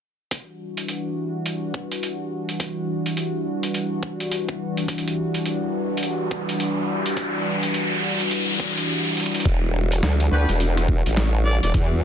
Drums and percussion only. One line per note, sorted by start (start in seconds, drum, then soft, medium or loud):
0.31 kick medium
0.31 closed hi-hat medium
0.77 closed hi-hat soft
0.88 closed hi-hat medium
1.46 closed hi-hat medium
1.74 kick medium
1.92 closed hi-hat soft
2.03 closed hi-hat medium
2.49 closed hi-hat soft
2.60 kick loud
2.60 closed hi-hat medium
3.06 closed hi-hat soft
3.17 closed hi-hat medium
3.63 closed hi-hat soft
3.74 closed hi-hat medium
4.03 kick medium
4.20 closed hi-hat soft
4.32 closed hi-hat medium
4.49 kick loud
4.77 closed hi-hat soft
4.88 kick loud
4.88 closed hi-hat medium
4.98 closed hi-hat soft
5.08 closed hi-hat soft
5.34 closed hi-hat soft
5.46 closed hi-hat medium
5.97 closed hi-hat soft
6.03 closed hi-hat medium
6.31 kick loud
6.49 closed hi-hat soft
6.60 closed hi-hat medium
7.06 closed hi-hat soft
7.17 kick loud
7.17 closed hi-hat medium
7.63 closed hi-hat soft
7.74 closed hi-hat medium
8.20 closed hi-hat soft
8.31 closed hi-hat medium
8.60 kick loud
8.77 closed hi-hat soft
9.17 closed hi-hat soft
9.20 closed hi-hat soft
9.23 closed hi-hat soft
9.26 closed hi-hat medium
9.26 closed hi-hat soft
9.32 closed hi-hat soft
9.34 closed hi-hat medium
9.40 closed hi-hat medium
9.45 kick loud
9.45 closed hi-hat medium
9.92 closed hi-hat medium
10.03 snare loud
10.03 closed hi-hat medium
10.20 closed hi-hat soft
10.49 closed hi-hat medium
10.60 closed hi-hat medium
10.77 cross-stick soft
10.77 closed hi-hat soft
10.88 kick loud
11.06 closed hi-hat medium
11.17 snare loud
11.17 closed hi-hat medium
11.63 closed hi-hat medium
11.74 kick loud
11.74 closed hi-hat medium